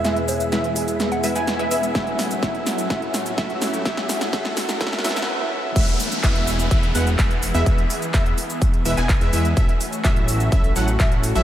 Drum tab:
CC |--------------------------------|--------------------------------|--------------------------------|x-------------------------------|
HH |x-x-o-x-x-x-o-x-x-x-o-x-x-x-o-x-|x-x-o-x-x-x-o-x-x-x-o-x-x-x-o-x-|x-x-o-x-x-x-o-x-x-x-o-x---------|x-x-o-x-x-x-o-x-x-x-o-x-x-x-o-x-|
SH |x---x-x-x---x-x-x---x-x-x---x-x-|x---x-x-x---x-x-x---x-x-x---x-x-|x---x-x-x---x-x-x---x-x---------|x---x-x-x---x-x-x---x-x-x---x-x-|
CP |--------------------------------|--------------------------------|--------------------------------|--------x---------------x-------|
SD |o-------o-------o-------o-------|o---o---o---o---o---o---o---o---|o-o-o-o-o-o-o-o-oooooooo--------|--------------------------------|
BD |--------------------------------|o-------o-------o-------o-------|o-------o-------o---------------|o-------o-------o-------o-------|

CC |--------------------------------|--------------------------------|
HH |x-x-o-x-x-x-o-x-x-x-o-x-x-x-o-x-|x-x-o-x-x-x-o-x-x-x-o-x-x-x-o-x-|
SH |x---x-x-x---x-x-x---x-x-x---x-x-|x---x-x-x---x-x-x---x-x-x---x-x-|
CP |--------x-------------x-x-------|--------x---------------x-------|
SD |--------------------------------|--------------------------------|
BD |o-------o-------o-------o-------|o-------o-------o-------o-------|